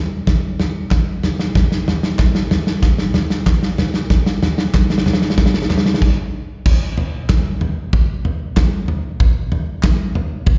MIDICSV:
0, 0, Header, 1, 2, 480
1, 0, Start_track
1, 0, Tempo, 636943
1, 1170, Time_signature, 4, 2, 24, 8
1, 7976, End_track
2, 0, Start_track
2, 0, Title_t, "Drums"
2, 206, Note_on_c, 9, 36, 96
2, 206, Note_on_c, 9, 38, 96
2, 206, Note_on_c, 9, 43, 88
2, 281, Note_off_c, 9, 36, 0
2, 282, Note_off_c, 9, 38, 0
2, 282, Note_off_c, 9, 43, 0
2, 449, Note_on_c, 9, 38, 91
2, 449, Note_on_c, 9, 43, 77
2, 524, Note_off_c, 9, 38, 0
2, 524, Note_off_c, 9, 43, 0
2, 686, Note_on_c, 9, 39, 89
2, 688, Note_on_c, 9, 36, 109
2, 688, Note_on_c, 9, 38, 96
2, 688, Note_on_c, 9, 43, 84
2, 761, Note_off_c, 9, 39, 0
2, 763, Note_off_c, 9, 36, 0
2, 763, Note_off_c, 9, 38, 0
2, 763, Note_off_c, 9, 43, 0
2, 930, Note_on_c, 9, 38, 93
2, 930, Note_on_c, 9, 43, 80
2, 1006, Note_off_c, 9, 38, 0
2, 1006, Note_off_c, 9, 43, 0
2, 1051, Note_on_c, 9, 38, 92
2, 1126, Note_off_c, 9, 38, 0
2, 1171, Note_on_c, 9, 36, 106
2, 1173, Note_on_c, 9, 38, 91
2, 1173, Note_on_c, 9, 43, 85
2, 1246, Note_off_c, 9, 36, 0
2, 1248, Note_off_c, 9, 38, 0
2, 1248, Note_off_c, 9, 43, 0
2, 1294, Note_on_c, 9, 38, 88
2, 1369, Note_off_c, 9, 38, 0
2, 1416, Note_on_c, 9, 38, 89
2, 1416, Note_on_c, 9, 43, 81
2, 1491, Note_off_c, 9, 38, 0
2, 1491, Note_off_c, 9, 43, 0
2, 1532, Note_on_c, 9, 38, 101
2, 1607, Note_off_c, 9, 38, 0
2, 1648, Note_on_c, 9, 39, 85
2, 1649, Note_on_c, 9, 38, 100
2, 1649, Note_on_c, 9, 43, 80
2, 1650, Note_on_c, 9, 36, 112
2, 1724, Note_off_c, 9, 38, 0
2, 1724, Note_off_c, 9, 39, 0
2, 1724, Note_off_c, 9, 43, 0
2, 1725, Note_off_c, 9, 36, 0
2, 1770, Note_on_c, 9, 38, 99
2, 1846, Note_off_c, 9, 38, 0
2, 1892, Note_on_c, 9, 38, 105
2, 1892, Note_on_c, 9, 43, 84
2, 1967, Note_off_c, 9, 38, 0
2, 1967, Note_off_c, 9, 43, 0
2, 2011, Note_on_c, 9, 38, 92
2, 2087, Note_off_c, 9, 38, 0
2, 2128, Note_on_c, 9, 38, 100
2, 2128, Note_on_c, 9, 43, 77
2, 2130, Note_on_c, 9, 36, 109
2, 2204, Note_off_c, 9, 38, 0
2, 2204, Note_off_c, 9, 43, 0
2, 2205, Note_off_c, 9, 36, 0
2, 2249, Note_on_c, 9, 38, 97
2, 2324, Note_off_c, 9, 38, 0
2, 2367, Note_on_c, 9, 38, 98
2, 2367, Note_on_c, 9, 43, 80
2, 2442, Note_off_c, 9, 38, 0
2, 2442, Note_off_c, 9, 43, 0
2, 2490, Note_on_c, 9, 38, 93
2, 2565, Note_off_c, 9, 38, 0
2, 2611, Note_on_c, 9, 36, 109
2, 2611, Note_on_c, 9, 38, 105
2, 2611, Note_on_c, 9, 43, 95
2, 2614, Note_on_c, 9, 39, 101
2, 2686, Note_off_c, 9, 36, 0
2, 2687, Note_off_c, 9, 38, 0
2, 2687, Note_off_c, 9, 43, 0
2, 2689, Note_off_c, 9, 39, 0
2, 2733, Note_on_c, 9, 38, 97
2, 2808, Note_off_c, 9, 38, 0
2, 2851, Note_on_c, 9, 38, 105
2, 2851, Note_on_c, 9, 43, 85
2, 2926, Note_off_c, 9, 38, 0
2, 2926, Note_off_c, 9, 43, 0
2, 2969, Note_on_c, 9, 38, 101
2, 3044, Note_off_c, 9, 38, 0
2, 3091, Note_on_c, 9, 36, 102
2, 3091, Note_on_c, 9, 38, 107
2, 3091, Note_on_c, 9, 43, 87
2, 3166, Note_off_c, 9, 38, 0
2, 3166, Note_off_c, 9, 43, 0
2, 3167, Note_off_c, 9, 36, 0
2, 3213, Note_on_c, 9, 38, 109
2, 3289, Note_off_c, 9, 38, 0
2, 3335, Note_on_c, 9, 38, 110
2, 3335, Note_on_c, 9, 43, 81
2, 3410, Note_off_c, 9, 38, 0
2, 3410, Note_off_c, 9, 43, 0
2, 3452, Note_on_c, 9, 38, 107
2, 3527, Note_off_c, 9, 38, 0
2, 3572, Note_on_c, 9, 36, 104
2, 3573, Note_on_c, 9, 38, 111
2, 3573, Note_on_c, 9, 43, 82
2, 3574, Note_on_c, 9, 39, 96
2, 3648, Note_off_c, 9, 36, 0
2, 3648, Note_off_c, 9, 38, 0
2, 3648, Note_off_c, 9, 43, 0
2, 3649, Note_off_c, 9, 39, 0
2, 3693, Note_on_c, 9, 38, 106
2, 3752, Note_off_c, 9, 38, 0
2, 3752, Note_on_c, 9, 38, 114
2, 3812, Note_off_c, 9, 38, 0
2, 3812, Note_on_c, 9, 38, 111
2, 3812, Note_on_c, 9, 43, 87
2, 3869, Note_off_c, 9, 38, 0
2, 3869, Note_on_c, 9, 38, 114
2, 3888, Note_off_c, 9, 43, 0
2, 3933, Note_off_c, 9, 38, 0
2, 3933, Note_on_c, 9, 38, 100
2, 3995, Note_off_c, 9, 38, 0
2, 3995, Note_on_c, 9, 38, 108
2, 4052, Note_off_c, 9, 38, 0
2, 4052, Note_on_c, 9, 38, 110
2, 4052, Note_on_c, 9, 43, 92
2, 4053, Note_on_c, 9, 36, 108
2, 4113, Note_off_c, 9, 38, 0
2, 4113, Note_on_c, 9, 38, 111
2, 4128, Note_off_c, 9, 36, 0
2, 4128, Note_off_c, 9, 43, 0
2, 4176, Note_off_c, 9, 38, 0
2, 4176, Note_on_c, 9, 38, 116
2, 4234, Note_off_c, 9, 38, 0
2, 4234, Note_on_c, 9, 38, 108
2, 4296, Note_off_c, 9, 38, 0
2, 4296, Note_on_c, 9, 38, 101
2, 4296, Note_on_c, 9, 43, 90
2, 4297, Note_on_c, 9, 39, 71
2, 4353, Note_off_c, 9, 38, 0
2, 4353, Note_on_c, 9, 38, 104
2, 4371, Note_off_c, 9, 43, 0
2, 4372, Note_off_c, 9, 39, 0
2, 4414, Note_off_c, 9, 38, 0
2, 4414, Note_on_c, 9, 38, 106
2, 4479, Note_off_c, 9, 38, 0
2, 4479, Note_on_c, 9, 38, 108
2, 4534, Note_on_c, 9, 49, 94
2, 4535, Note_on_c, 9, 36, 106
2, 4554, Note_off_c, 9, 38, 0
2, 4610, Note_off_c, 9, 49, 0
2, 4611, Note_off_c, 9, 36, 0
2, 5017, Note_on_c, 9, 36, 117
2, 5017, Note_on_c, 9, 43, 90
2, 5017, Note_on_c, 9, 49, 109
2, 5093, Note_off_c, 9, 36, 0
2, 5093, Note_off_c, 9, 43, 0
2, 5093, Note_off_c, 9, 49, 0
2, 5256, Note_on_c, 9, 43, 87
2, 5332, Note_off_c, 9, 43, 0
2, 5495, Note_on_c, 9, 38, 108
2, 5495, Note_on_c, 9, 43, 97
2, 5497, Note_on_c, 9, 36, 119
2, 5498, Note_on_c, 9, 39, 94
2, 5570, Note_off_c, 9, 38, 0
2, 5570, Note_off_c, 9, 43, 0
2, 5573, Note_off_c, 9, 36, 0
2, 5574, Note_off_c, 9, 39, 0
2, 5735, Note_on_c, 9, 43, 96
2, 5811, Note_off_c, 9, 43, 0
2, 5977, Note_on_c, 9, 36, 116
2, 5978, Note_on_c, 9, 43, 84
2, 6052, Note_off_c, 9, 36, 0
2, 6053, Note_off_c, 9, 43, 0
2, 6216, Note_on_c, 9, 43, 94
2, 6292, Note_off_c, 9, 43, 0
2, 6456, Note_on_c, 9, 36, 118
2, 6456, Note_on_c, 9, 38, 121
2, 6456, Note_on_c, 9, 43, 92
2, 6457, Note_on_c, 9, 39, 96
2, 6531, Note_off_c, 9, 38, 0
2, 6531, Note_off_c, 9, 43, 0
2, 6532, Note_off_c, 9, 36, 0
2, 6532, Note_off_c, 9, 39, 0
2, 6693, Note_on_c, 9, 43, 87
2, 6768, Note_off_c, 9, 43, 0
2, 6933, Note_on_c, 9, 43, 97
2, 6934, Note_on_c, 9, 36, 122
2, 7009, Note_off_c, 9, 36, 0
2, 7009, Note_off_c, 9, 43, 0
2, 7172, Note_on_c, 9, 43, 88
2, 7248, Note_off_c, 9, 43, 0
2, 7408, Note_on_c, 9, 39, 101
2, 7412, Note_on_c, 9, 36, 127
2, 7412, Note_on_c, 9, 38, 120
2, 7412, Note_on_c, 9, 43, 96
2, 7483, Note_off_c, 9, 39, 0
2, 7487, Note_off_c, 9, 38, 0
2, 7487, Note_off_c, 9, 43, 0
2, 7488, Note_off_c, 9, 36, 0
2, 7651, Note_on_c, 9, 43, 95
2, 7727, Note_off_c, 9, 43, 0
2, 7886, Note_on_c, 9, 43, 89
2, 7889, Note_on_c, 9, 36, 121
2, 7961, Note_off_c, 9, 43, 0
2, 7964, Note_off_c, 9, 36, 0
2, 7976, End_track
0, 0, End_of_file